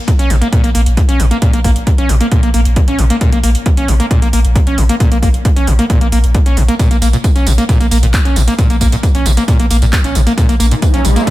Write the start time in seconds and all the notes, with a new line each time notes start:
0.08 A#2, kick, closed hi-hat
0.19 A#1 C#4, closed hi-hat
0.30 A#1 A#2, open hi-hat
0.42 A#3, closed hi-hat
0.52 A#2, kick, closed hi-hat
0.64 A#1 A#3, closed hi-hat
0.75 A#1 A#3, open hi-hat
0.86 A#1, closed hi-hat
0.97 A#2, kick, closed hi-hat
1.09 A#1 C#4, closed hi-hat
1.20 A#1 A#2, open hi-hat
1.31 A#3, closed hi-hat
1.42 A#2, kick, closed hi-hat
1.53 A#1 A#3, closed hi-hat
1.64 A#1 A#3, kick, open hi-hat
1.76 closed hi-hat
1.87 A#2, kick, closed hi-hat
1.98 A#1 C#4, closed hi-hat
2.09 A#1 A#2, open hi-hat
2.21 A#3, closed hi-hat
2.32 A#2, kick, closed hi-hat
2.43 A#1 A#3, closed hi-hat
2.54 A#1 A#3, open hi-hat
2.65 A#1, closed hi-hat
2.76 A#2, kick, closed hi-hat
2.88 A#1 C#4, closed hi-hat
2.98 A#1 A#2, open hi-hat
3.10 A#3, closed hi-hat
3.21 A#2, kick, closed hi-hat
3.32 A#1 A#3, closed hi-hat
3.43 A#1 A#3, open hi-hat
3.55 closed hi-hat
3.66 A#2, kick, closed hi-hat
3.77 A#1 C#4, closed hi-hat
3.88 A#1 A#2, open hi-hat
4.00 A#3, closed hi-hat
4.11 A#2, kick, closed hi-hat
4.22 A#1 A#3, closed hi-hat
4.33 A#1 A#3, open hi-hat
4.44 A#1, closed hi-hat
4.55 A#2, kick, closed hi-hat
4.67 A#1 C#4, closed hi-hat
4.78 A#1 A#2, open hi-hat
4.89 A#3, closed hi-hat
5.00 A#2, kick, closed hi-hat
5.12 A#1 A#3, closed hi-hat
5.22 A#1 A#3, kick, open hi-hat
5.34 closed hi-hat
5.45 A#2, kick, closed hi-hat
5.56 A#1 C#4, closed hi-hat
5.67 A#1 A#2, open hi-hat
5.79 A#3, closed hi-hat
5.90 A#2, kick, closed hi-hat
6.01 A#1 A#3, closed hi-hat
6.12 A#1 A#3, open hi-hat
6.24 A#1, closed hi-hat
6.35 A#2, kick, closed hi-hat
6.46 A#1 C#4, closed hi-hat
6.57 A#1 A#2, open hi-hat
6.68 A#3, closed hi-hat
6.79 A#2, kick, closed hi-hat, tambourine
6.91 A#1 A#3, closed hi-hat, tambourine
7.02 A#1 A#3, open hi-hat, tambourine
7.13 A#2, closed hi-hat, tambourine
7.24 kick, closed hi-hat, tambourine
7.36 A#1 C#4, closed hi-hat, tambourine
7.47 A#1 A#2, open hi-hat, tambourine
7.58 A#3, closed hi-hat, tambourine
7.69 A#2, kick, closed hi-hat, tambourine
7.80 A#1 A#3, closed hi-hat, tambourine
7.91 A#1 A#3, open hi-hat, tambourine
8.03 A#1 A#2, closed hi-hat, tambourine
8.14 kick, clap, closed hi-hat, tambourine
8.25 A#1 C#4, closed hi-hat, tambourine
8.36 A#1 A#2, open hi-hat, tambourine
8.47 A#3, closed hi-hat, tambourine
8.58 A#2, kick, closed hi-hat, tambourine
8.70 A#1 A#3, closed hi-hat, tambourine
8.81 A#1 A#3, kick, open hi-hat, tambourine
8.92 A#2, closed hi-hat, tambourine
9.03 kick, closed hi-hat, tambourine
9.15 A#1 C#4, closed hi-hat, tambourine
9.26 A#1 A#2, open hi-hat, tambourine
9.37 A#3, closed hi-hat, tambourine
9.48 A#2, kick, closed hi-hat, tambourine
9.59 A#1 A#3, closed hi-hat, tambourine
9.70 A#1 A#3, open hi-hat, tambourine
9.82 A#1 A#2, closed hi-hat, tambourine
9.93 kick, clap, closed hi-hat, tambourine
10.04 A#1 C#4, closed hi-hat, tambourine
10.15 A#1 A#2, open hi-hat, tambourine
10.27 A#3, closed hi-hat, tambourine
10.38 A#2, kick, closed hi-hat, tambourine, riser
10.49 A#1 A#3, closed hi-hat, tambourine
10.60 A#1 A#3, open hi-hat, tambourine
10.71 A#2, closed hi-hat, tambourine
10.82 kick, closed hi-hat, tambourine
10.94 A#1 C#4, closed hi-hat, tambourine
11.05 A#1 A#2, open hi-hat, tambourine
11.16 A#3, closed hi-hat, tambourine
11.27 A#2, kick, closed hi-hat, tambourine